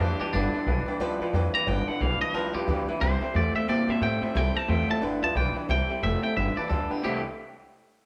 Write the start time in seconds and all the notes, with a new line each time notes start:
0.00 F2 G2 E3 G3 D4 E4 G4 B4 D5 A5
0.20 G2 E3 D4 E4 G4 B4 D5 A5, muted upright bass stroke
0.33 G1 G2 D3 G3 D4 E4 B4 D5 A5
0.53 G2 D3 D4 E4 B4 D5 A5, muted upright bass stroke
0.66 B1 G2 E3 G3 D4 E4 B4 D5 G5
0.86 G2 E3 D4 E4 B4 D5 G5, muted upright bass stroke
1.00 D2 G2 F3 G3 D4 E4 B4 D5 G5
1.20 D2 G2 F3 D4 E4 B4 D5 G5
1.33 F2 G2 E3 G3 D4 E4 B4 D5 G5
1.53 G2 E3 D4 E4 B4 G5 A#5, muted upright bass stroke
1.67 G1 G2 D3 G3 D4 E4 B4 D5 G5
1.87 G2 D3 D4 E4 B4 D5 F#5 A5, muted upright bass stroke
2.00 B1 G2 E3 G3 D4 E4 B4 D5 F5 G5
2.21 G2 E3 D4 E4 B4 D5 D#5 A5, muted upright bass stroke
2.33 D2 G2 F3 G3 D4 E4 A#4 B4 D5 A5
2.54 D2 G2 F3 D4 E4 G4 B4 D5 G5
2.67 D2 G2 E3 G3 D4 E4 B4 D5 G5
2.88 G2 E3 D4 E4 B4 D5 E5, muted upright bass stroke
3.01 C2 C3 E3 G3 C4 E4 A4 C5 E5 G5
3.21 C3 G3 C4 E4 A4 C5 E5 G5, muted upright bass stroke
3.34 E2 C3 G3 A3 C4 E4 A4 C5 D5 E5 G5
3.54 C3 G3 A3 C4 E4 A4 C5 E5 G5, muted upright bass stroke
3.67 G2 C3 E3 G3 A#3 C4 E4 A4 C5 D5 E5 G5
3.88 G2 C3 G3 A#3 C4 E4 A4 C5 E5 A5
4.01 A2 C3 G3 A3 C4 E4 A4 C5 E5 G5
4.21 C3 G3 A3 C4 E4 A4 C5 E5 G5, muted upright bass stroke
4.35 C2 C3 E3 G3 C4 E4 A4 C5 E5 G5
4.54 C3 G3 C4 E4 A4 C5 E5 A5, muted upright bass stroke
4.68 E2 C3 G3 A3 C4 E4 A4 C5 E5 G5 A5
4.88 C3 G3 A3 C4 E4 A4 C5 E5 G5 A5, muted upright bass stroke
5.01 G1 G2 D3 G3 D4 E4 B4 D5 G5
5.22 D2 G2 F3 D4 E4 B4 D5 E5 A5
5.35 B1 G2 E3 G3 D4 E4 B4 D5 G5
5.54 G2 E3 D4 E4 B4 D5 G5, muted upright bass stroke
5.68 C2 C3 E3 G3 C4 E4 A4 C5 E5 G5
5.89 C3 G3 C4 E4 A4 C5 E5 G5, muted upright bass stroke
6.02 F1 C3 E3 G3 A3 C4 E4 A4 C5 E5 G5
6.23 C3 G3 A3 C4 E4 A4 C5 E5 G5, muted upright bass stroke
6.35 G1 G2 D3 G3 D4 E4 B4 D5 E5 G5
6.56 G2 E3 D4 E4 B4 D5 A5, muted upright bass stroke
6.69 D2 G2 D3 G3 D4 E4 A4 B4 D5 G5
6.89 G2 D3 D4 E4 G4 B4 D5 G5, muted upright bass stroke
7.03 C2 C3 E3 G3 A3 C4 E4 G4 A4 E5 G5